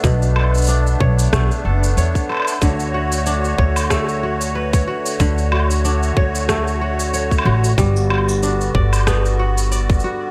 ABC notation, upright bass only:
X:1
M:4/4
L:1/8
Q:"Swing 16ths" 1/4=93
K:Dlyd
V:1 name="Upright bass" clef=bass
B,,,3 B,,, B,,, F,,, E,, z | D,,3 D,,4 z | D,,3 D,,4 A,,, | =G,,,3 G,,,4 z |]